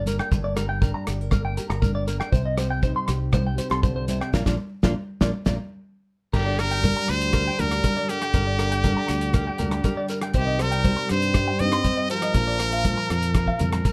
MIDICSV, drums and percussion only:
0, 0, Header, 1, 3, 480
1, 0, Start_track
1, 0, Key_signature, -2, "minor"
1, 0, Tempo, 500835
1, 311, Time_signature, 4, 2, 24, 8
1, 13346, End_track
2, 0, Start_track
2, 0, Title_t, "Shekere"
2, 69, Note_on_c, 9, 82, 69
2, 165, Note_off_c, 9, 82, 0
2, 309, Note_on_c, 9, 82, 97
2, 405, Note_off_c, 9, 82, 0
2, 548, Note_on_c, 9, 82, 67
2, 644, Note_off_c, 9, 82, 0
2, 794, Note_on_c, 9, 82, 78
2, 890, Note_off_c, 9, 82, 0
2, 1033, Note_on_c, 9, 82, 72
2, 1128, Note_off_c, 9, 82, 0
2, 1272, Note_on_c, 9, 82, 76
2, 1368, Note_off_c, 9, 82, 0
2, 1514, Note_on_c, 9, 82, 67
2, 1610, Note_off_c, 9, 82, 0
2, 1755, Note_on_c, 9, 82, 87
2, 1851, Note_off_c, 9, 82, 0
2, 1995, Note_on_c, 9, 82, 61
2, 2091, Note_off_c, 9, 82, 0
2, 2238, Note_on_c, 9, 82, 74
2, 2334, Note_off_c, 9, 82, 0
2, 2477, Note_on_c, 9, 82, 64
2, 2572, Note_off_c, 9, 82, 0
2, 2710, Note_on_c, 9, 82, 65
2, 2806, Note_off_c, 9, 82, 0
2, 2956, Note_on_c, 9, 82, 71
2, 3052, Note_off_c, 9, 82, 0
2, 3192, Note_on_c, 9, 82, 87
2, 3288, Note_off_c, 9, 82, 0
2, 3439, Note_on_c, 9, 82, 72
2, 3535, Note_off_c, 9, 82, 0
2, 3678, Note_on_c, 9, 82, 98
2, 3774, Note_off_c, 9, 82, 0
2, 3917, Note_on_c, 9, 82, 78
2, 4013, Note_off_c, 9, 82, 0
2, 4158, Note_on_c, 9, 82, 94
2, 4254, Note_off_c, 9, 82, 0
2, 4281, Note_on_c, 9, 82, 89
2, 4376, Note_off_c, 9, 82, 0
2, 4635, Note_on_c, 9, 82, 83
2, 4730, Note_off_c, 9, 82, 0
2, 5000, Note_on_c, 9, 82, 85
2, 5096, Note_off_c, 9, 82, 0
2, 5234, Note_on_c, 9, 82, 96
2, 5330, Note_off_c, 9, 82, 0
2, 6075, Note_on_c, 9, 82, 87
2, 6171, Note_off_c, 9, 82, 0
2, 6311, Note_on_c, 9, 82, 70
2, 6407, Note_off_c, 9, 82, 0
2, 6556, Note_on_c, 9, 82, 80
2, 6652, Note_off_c, 9, 82, 0
2, 6799, Note_on_c, 9, 82, 62
2, 6895, Note_off_c, 9, 82, 0
2, 7039, Note_on_c, 9, 82, 84
2, 7135, Note_off_c, 9, 82, 0
2, 7275, Note_on_c, 9, 82, 67
2, 7371, Note_off_c, 9, 82, 0
2, 7513, Note_on_c, 9, 82, 88
2, 7609, Note_off_c, 9, 82, 0
2, 7754, Note_on_c, 9, 82, 68
2, 7850, Note_off_c, 9, 82, 0
2, 7996, Note_on_c, 9, 82, 85
2, 8091, Note_off_c, 9, 82, 0
2, 8240, Note_on_c, 9, 82, 72
2, 8335, Note_off_c, 9, 82, 0
2, 8479, Note_on_c, 9, 82, 82
2, 8575, Note_off_c, 9, 82, 0
2, 8717, Note_on_c, 9, 82, 73
2, 8813, Note_off_c, 9, 82, 0
2, 8947, Note_on_c, 9, 82, 90
2, 9043, Note_off_c, 9, 82, 0
2, 9194, Note_on_c, 9, 82, 66
2, 9290, Note_off_c, 9, 82, 0
2, 9434, Note_on_c, 9, 82, 81
2, 9529, Note_off_c, 9, 82, 0
2, 9675, Note_on_c, 9, 82, 69
2, 9771, Note_off_c, 9, 82, 0
2, 9913, Note_on_c, 9, 82, 82
2, 10009, Note_off_c, 9, 82, 0
2, 10159, Note_on_c, 9, 82, 72
2, 10255, Note_off_c, 9, 82, 0
2, 10399, Note_on_c, 9, 82, 69
2, 10494, Note_off_c, 9, 82, 0
2, 10640, Note_on_c, 9, 82, 64
2, 10735, Note_off_c, 9, 82, 0
2, 10876, Note_on_c, 9, 82, 80
2, 10972, Note_off_c, 9, 82, 0
2, 11358, Note_on_c, 9, 82, 92
2, 11454, Note_off_c, 9, 82, 0
2, 11596, Note_on_c, 9, 82, 65
2, 11692, Note_off_c, 9, 82, 0
2, 11839, Note_on_c, 9, 82, 87
2, 11934, Note_off_c, 9, 82, 0
2, 12079, Note_on_c, 9, 82, 61
2, 12175, Note_off_c, 9, 82, 0
2, 12309, Note_on_c, 9, 82, 74
2, 12405, Note_off_c, 9, 82, 0
2, 12554, Note_on_c, 9, 82, 67
2, 12650, Note_off_c, 9, 82, 0
2, 12792, Note_on_c, 9, 82, 81
2, 12888, Note_off_c, 9, 82, 0
2, 13033, Note_on_c, 9, 82, 63
2, 13128, Note_off_c, 9, 82, 0
2, 13274, Note_on_c, 9, 82, 84
2, 13346, Note_off_c, 9, 82, 0
2, 13346, End_track
3, 0, Start_track
3, 0, Title_t, "Drums"
3, 59, Note_on_c, 9, 63, 58
3, 66, Note_on_c, 9, 42, 51
3, 154, Note_off_c, 9, 63, 0
3, 162, Note_off_c, 9, 42, 0
3, 186, Note_on_c, 9, 37, 65
3, 282, Note_off_c, 9, 37, 0
3, 301, Note_on_c, 9, 62, 28
3, 304, Note_on_c, 9, 36, 89
3, 397, Note_off_c, 9, 62, 0
3, 399, Note_off_c, 9, 36, 0
3, 543, Note_on_c, 9, 37, 67
3, 543, Note_on_c, 9, 42, 47
3, 639, Note_off_c, 9, 37, 0
3, 639, Note_off_c, 9, 42, 0
3, 784, Note_on_c, 9, 36, 87
3, 880, Note_off_c, 9, 36, 0
3, 1025, Note_on_c, 9, 37, 62
3, 1025, Note_on_c, 9, 42, 45
3, 1029, Note_on_c, 9, 62, 28
3, 1121, Note_off_c, 9, 37, 0
3, 1121, Note_off_c, 9, 42, 0
3, 1125, Note_off_c, 9, 62, 0
3, 1257, Note_on_c, 9, 37, 64
3, 1263, Note_on_c, 9, 36, 84
3, 1271, Note_on_c, 9, 62, 23
3, 1271, Note_on_c, 9, 63, 66
3, 1353, Note_off_c, 9, 37, 0
3, 1359, Note_off_c, 9, 36, 0
3, 1367, Note_off_c, 9, 62, 0
3, 1367, Note_off_c, 9, 63, 0
3, 1508, Note_on_c, 9, 42, 45
3, 1517, Note_on_c, 9, 62, 27
3, 1603, Note_off_c, 9, 42, 0
3, 1613, Note_off_c, 9, 62, 0
3, 1631, Note_on_c, 9, 37, 63
3, 1726, Note_off_c, 9, 37, 0
3, 1747, Note_on_c, 9, 36, 87
3, 1755, Note_on_c, 9, 63, 72
3, 1843, Note_off_c, 9, 36, 0
3, 1850, Note_off_c, 9, 63, 0
3, 1991, Note_on_c, 9, 42, 51
3, 2087, Note_off_c, 9, 42, 0
3, 2115, Note_on_c, 9, 37, 62
3, 2211, Note_off_c, 9, 37, 0
3, 2228, Note_on_c, 9, 36, 79
3, 2237, Note_on_c, 9, 62, 32
3, 2324, Note_off_c, 9, 36, 0
3, 2333, Note_off_c, 9, 62, 0
3, 2468, Note_on_c, 9, 37, 66
3, 2468, Note_on_c, 9, 42, 43
3, 2564, Note_off_c, 9, 37, 0
3, 2564, Note_off_c, 9, 42, 0
3, 2710, Note_on_c, 9, 36, 86
3, 2806, Note_off_c, 9, 36, 0
3, 2950, Note_on_c, 9, 37, 58
3, 2950, Note_on_c, 9, 42, 45
3, 2961, Note_on_c, 9, 62, 27
3, 3046, Note_off_c, 9, 37, 0
3, 3046, Note_off_c, 9, 42, 0
3, 3057, Note_off_c, 9, 62, 0
3, 3189, Note_on_c, 9, 37, 67
3, 3192, Note_on_c, 9, 36, 87
3, 3202, Note_on_c, 9, 62, 23
3, 3202, Note_on_c, 9, 63, 81
3, 3285, Note_off_c, 9, 37, 0
3, 3287, Note_off_c, 9, 36, 0
3, 3298, Note_off_c, 9, 62, 0
3, 3298, Note_off_c, 9, 63, 0
3, 3432, Note_on_c, 9, 42, 52
3, 3439, Note_on_c, 9, 62, 25
3, 3528, Note_off_c, 9, 42, 0
3, 3535, Note_off_c, 9, 62, 0
3, 3557, Note_on_c, 9, 37, 63
3, 3653, Note_off_c, 9, 37, 0
3, 3674, Note_on_c, 9, 36, 95
3, 3676, Note_on_c, 9, 63, 61
3, 3770, Note_off_c, 9, 36, 0
3, 3772, Note_off_c, 9, 63, 0
3, 3912, Note_on_c, 9, 42, 51
3, 3915, Note_on_c, 9, 63, 53
3, 4007, Note_off_c, 9, 42, 0
3, 4011, Note_off_c, 9, 63, 0
3, 4040, Note_on_c, 9, 37, 65
3, 4136, Note_off_c, 9, 37, 0
3, 4156, Note_on_c, 9, 36, 74
3, 4157, Note_on_c, 9, 63, 91
3, 4158, Note_on_c, 9, 38, 72
3, 4252, Note_off_c, 9, 36, 0
3, 4253, Note_off_c, 9, 63, 0
3, 4254, Note_off_c, 9, 38, 0
3, 4274, Note_on_c, 9, 38, 75
3, 4277, Note_on_c, 9, 36, 83
3, 4277, Note_on_c, 9, 63, 88
3, 4370, Note_off_c, 9, 38, 0
3, 4373, Note_off_c, 9, 36, 0
3, 4373, Note_off_c, 9, 63, 0
3, 4630, Note_on_c, 9, 38, 74
3, 4634, Note_on_c, 9, 36, 73
3, 4638, Note_on_c, 9, 63, 86
3, 4725, Note_off_c, 9, 38, 0
3, 4730, Note_off_c, 9, 36, 0
3, 4733, Note_off_c, 9, 63, 0
3, 4991, Note_on_c, 9, 38, 74
3, 4995, Note_on_c, 9, 63, 93
3, 4996, Note_on_c, 9, 36, 73
3, 5087, Note_off_c, 9, 38, 0
3, 5091, Note_off_c, 9, 63, 0
3, 5092, Note_off_c, 9, 36, 0
3, 5233, Note_on_c, 9, 38, 70
3, 5237, Note_on_c, 9, 36, 70
3, 5245, Note_on_c, 9, 63, 99
3, 5329, Note_off_c, 9, 38, 0
3, 5333, Note_off_c, 9, 36, 0
3, 5341, Note_off_c, 9, 63, 0
3, 6073, Note_on_c, 9, 49, 74
3, 6074, Note_on_c, 9, 36, 81
3, 6087, Note_on_c, 9, 62, 30
3, 6169, Note_off_c, 9, 49, 0
3, 6170, Note_off_c, 9, 36, 0
3, 6183, Note_off_c, 9, 62, 0
3, 6315, Note_on_c, 9, 37, 57
3, 6315, Note_on_c, 9, 42, 39
3, 6328, Note_on_c, 9, 62, 27
3, 6411, Note_off_c, 9, 37, 0
3, 6411, Note_off_c, 9, 42, 0
3, 6423, Note_off_c, 9, 62, 0
3, 6435, Note_on_c, 9, 42, 43
3, 6530, Note_off_c, 9, 42, 0
3, 6551, Note_on_c, 9, 42, 43
3, 6552, Note_on_c, 9, 36, 59
3, 6566, Note_on_c, 9, 63, 83
3, 6647, Note_off_c, 9, 42, 0
3, 6648, Note_off_c, 9, 36, 0
3, 6661, Note_off_c, 9, 63, 0
3, 6788, Note_on_c, 9, 37, 55
3, 6788, Note_on_c, 9, 42, 42
3, 6884, Note_off_c, 9, 37, 0
3, 6884, Note_off_c, 9, 42, 0
3, 6912, Note_on_c, 9, 42, 50
3, 7008, Note_off_c, 9, 42, 0
3, 7025, Note_on_c, 9, 37, 61
3, 7025, Note_on_c, 9, 42, 50
3, 7031, Note_on_c, 9, 36, 83
3, 7047, Note_on_c, 9, 62, 28
3, 7121, Note_off_c, 9, 37, 0
3, 7121, Note_off_c, 9, 42, 0
3, 7127, Note_off_c, 9, 36, 0
3, 7142, Note_off_c, 9, 62, 0
3, 7273, Note_on_c, 9, 42, 48
3, 7280, Note_on_c, 9, 63, 76
3, 7369, Note_off_c, 9, 42, 0
3, 7376, Note_off_c, 9, 63, 0
3, 7393, Note_on_c, 9, 37, 60
3, 7393, Note_on_c, 9, 42, 44
3, 7489, Note_off_c, 9, 37, 0
3, 7489, Note_off_c, 9, 42, 0
3, 7512, Note_on_c, 9, 42, 52
3, 7514, Note_on_c, 9, 36, 66
3, 7517, Note_on_c, 9, 63, 73
3, 7608, Note_off_c, 9, 42, 0
3, 7610, Note_off_c, 9, 36, 0
3, 7613, Note_off_c, 9, 63, 0
3, 7757, Note_on_c, 9, 42, 53
3, 7852, Note_off_c, 9, 42, 0
3, 7875, Note_on_c, 9, 37, 56
3, 7875, Note_on_c, 9, 42, 41
3, 7971, Note_off_c, 9, 37, 0
3, 7971, Note_off_c, 9, 42, 0
3, 7989, Note_on_c, 9, 42, 51
3, 7992, Note_on_c, 9, 36, 85
3, 7998, Note_on_c, 9, 62, 35
3, 8085, Note_off_c, 9, 42, 0
3, 8088, Note_off_c, 9, 36, 0
3, 8094, Note_off_c, 9, 62, 0
3, 8232, Note_on_c, 9, 37, 58
3, 8232, Note_on_c, 9, 42, 46
3, 8240, Note_on_c, 9, 62, 30
3, 8328, Note_off_c, 9, 37, 0
3, 8328, Note_off_c, 9, 42, 0
3, 8336, Note_off_c, 9, 62, 0
3, 8355, Note_on_c, 9, 42, 45
3, 8451, Note_off_c, 9, 42, 0
3, 8470, Note_on_c, 9, 42, 46
3, 8473, Note_on_c, 9, 36, 65
3, 8482, Note_on_c, 9, 63, 91
3, 8565, Note_off_c, 9, 42, 0
3, 8569, Note_off_c, 9, 36, 0
3, 8578, Note_off_c, 9, 63, 0
3, 8706, Note_on_c, 9, 37, 62
3, 8706, Note_on_c, 9, 42, 42
3, 8726, Note_on_c, 9, 62, 27
3, 8802, Note_off_c, 9, 37, 0
3, 8802, Note_off_c, 9, 42, 0
3, 8822, Note_off_c, 9, 62, 0
3, 8829, Note_on_c, 9, 42, 50
3, 8925, Note_off_c, 9, 42, 0
3, 8949, Note_on_c, 9, 37, 66
3, 8949, Note_on_c, 9, 42, 47
3, 8953, Note_on_c, 9, 36, 81
3, 8964, Note_on_c, 9, 62, 26
3, 9045, Note_off_c, 9, 37, 0
3, 9045, Note_off_c, 9, 42, 0
3, 9048, Note_off_c, 9, 36, 0
3, 9060, Note_off_c, 9, 62, 0
3, 9185, Note_on_c, 9, 42, 45
3, 9199, Note_on_c, 9, 63, 64
3, 9199, Note_on_c, 9, 64, 55
3, 9281, Note_off_c, 9, 42, 0
3, 9295, Note_off_c, 9, 63, 0
3, 9295, Note_off_c, 9, 64, 0
3, 9310, Note_on_c, 9, 37, 66
3, 9310, Note_on_c, 9, 42, 40
3, 9406, Note_off_c, 9, 37, 0
3, 9406, Note_off_c, 9, 42, 0
3, 9430, Note_on_c, 9, 42, 46
3, 9433, Note_on_c, 9, 36, 65
3, 9438, Note_on_c, 9, 63, 63
3, 9526, Note_off_c, 9, 42, 0
3, 9529, Note_off_c, 9, 36, 0
3, 9534, Note_off_c, 9, 63, 0
3, 9666, Note_on_c, 9, 42, 46
3, 9761, Note_off_c, 9, 42, 0
3, 9790, Note_on_c, 9, 37, 59
3, 9790, Note_on_c, 9, 42, 42
3, 9886, Note_off_c, 9, 37, 0
3, 9886, Note_off_c, 9, 42, 0
3, 9906, Note_on_c, 9, 42, 43
3, 9913, Note_on_c, 9, 36, 83
3, 9921, Note_on_c, 9, 62, 28
3, 10001, Note_off_c, 9, 42, 0
3, 10009, Note_off_c, 9, 36, 0
3, 10017, Note_off_c, 9, 62, 0
3, 10152, Note_on_c, 9, 37, 60
3, 10152, Note_on_c, 9, 42, 39
3, 10159, Note_on_c, 9, 62, 23
3, 10248, Note_off_c, 9, 37, 0
3, 10248, Note_off_c, 9, 42, 0
3, 10255, Note_off_c, 9, 62, 0
3, 10274, Note_on_c, 9, 42, 46
3, 10370, Note_off_c, 9, 42, 0
3, 10392, Note_on_c, 9, 42, 45
3, 10394, Note_on_c, 9, 36, 68
3, 10400, Note_on_c, 9, 63, 81
3, 10488, Note_off_c, 9, 42, 0
3, 10490, Note_off_c, 9, 36, 0
3, 10496, Note_off_c, 9, 63, 0
3, 10631, Note_on_c, 9, 37, 65
3, 10631, Note_on_c, 9, 42, 43
3, 10651, Note_on_c, 9, 62, 24
3, 10727, Note_off_c, 9, 37, 0
3, 10727, Note_off_c, 9, 42, 0
3, 10747, Note_off_c, 9, 62, 0
3, 10755, Note_on_c, 9, 42, 46
3, 10851, Note_off_c, 9, 42, 0
3, 10870, Note_on_c, 9, 37, 62
3, 10870, Note_on_c, 9, 42, 46
3, 10874, Note_on_c, 9, 36, 78
3, 10889, Note_on_c, 9, 62, 24
3, 10966, Note_off_c, 9, 37, 0
3, 10966, Note_off_c, 9, 42, 0
3, 10970, Note_off_c, 9, 36, 0
3, 10985, Note_off_c, 9, 62, 0
3, 11110, Note_on_c, 9, 42, 49
3, 11123, Note_on_c, 9, 63, 61
3, 11206, Note_off_c, 9, 42, 0
3, 11219, Note_off_c, 9, 63, 0
3, 11232, Note_on_c, 9, 37, 62
3, 11232, Note_on_c, 9, 42, 42
3, 11328, Note_off_c, 9, 37, 0
3, 11328, Note_off_c, 9, 42, 0
3, 11351, Note_on_c, 9, 42, 49
3, 11352, Note_on_c, 9, 36, 61
3, 11362, Note_on_c, 9, 63, 61
3, 11447, Note_off_c, 9, 42, 0
3, 11448, Note_off_c, 9, 36, 0
3, 11457, Note_off_c, 9, 63, 0
3, 11593, Note_on_c, 9, 42, 51
3, 11689, Note_off_c, 9, 42, 0
3, 11713, Note_on_c, 9, 37, 62
3, 11713, Note_on_c, 9, 42, 51
3, 11808, Note_off_c, 9, 37, 0
3, 11808, Note_off_c, 9, 42, 0
3, 11830, Note_on_c, 9, 42, 52
3, 11832, Note_on_c, 9, 36, 77
3, 11841, Note_on_c, 9, 62, 25
3, 11926, Note_off_c, 9, 42, 0
3, 11928, Note_off_c, 9, 36, 0
3, 11937, Note_off_c, 9, 62, 0
3, 12071, Note_on_c, 9, 37, 55
3, 12071, Note_on_c, 9, 42, 50
3, 12080, Note_on_c, 9, 62, 25
3, 12167, Note_off_c, 9, 37, 0
3, 12167, Note_off_c, 9, 42, 0
3, 12176, Note_off_c, 9, 62, 0
3, 12191, Note_on_c, 9, 42, 48
3, 12286, Note_off_c, 9, 42, 0
3, 12313, Note_on_c, 9, 36, 66
3, 12314, Note_on_c, 9, 42, 49
3, 12314, Note_on_c, 9, 63, 72
3, 12409, Note_off_c, 9, 36, 0
3, 12410, Note_off_c, 9, 42, 0
3, 12410, Note_off_c, 9, 63, 0
3, 12558, Note_on_c, 9, 37, 58
3, 12558, Note_on_c, 9, 42, 46
3, 12559, Note_on_c, 9, 62, 27
3, 12654, Note_off_c, 9, 37, 0
3, 12654, Note_off_c, 9, 42, 0
3, 12655, Note_off_c, 9, 62, 0
3, 12675, Note_on_c, 9, 42, 50
3, 12771, Note_off_c, 9, 42, 0
3, 12790, Note_on_c, 9, 37, 64
3, 12790, Note_on_c, 9, 42, 48
3, 12792, Note_on_c, 9, 36, 85
3, 12806, Note_on_c, 9, 62, 24
3, 12886, Note_off_c, 9, 37, 0
3, 12886, Note_off_c, 9, 42, 0
3, 12888, Note_off_c, 9, 36, 0
3, 12902, Note_off_c, 9, 62, 0
3, 12913, Note_on_c, 9, 36, 58
3, 13008, Note_off_c, 9, 36, 0
3, 13028, Note_on_c, 9, 42, 47
3, 13044, Note_on_c, 9, 63, 67
3, 13044, Note_on_c, 9, 64, 56
3, 13124, Note_off_c, 9, 42, 0
3, 13140, Note_off_c, 9, 63, 0
3, 13140, Note_off_c, 9, 64, 0
3, 13154, Note_on_c, 9, 37, 60
3, 13154, Note_on_c, 9, 42, 43
3, 13165, Note_on_c, 9, 63, 50
3, 13250, Note_off_c, 9, 37, 0
3, 13250, Note_off_c, 9, 42, 0
3, 13261, Note_off_c, 9, 63, 0
3, 13274, Note_on_c, 9, 36, 67
3, 13276, Note_on_c, 9, 42, 45
3, 13282, Note_on_c, 9, 63, 55
3, 13346, Note_off_c, 9, 36, 0
3, 13346, Note_off_c, 9, 42, 0
3, 13346, Note_off_c, 9, 63, 0
3, 13346, End_track
0, 0, End_of_file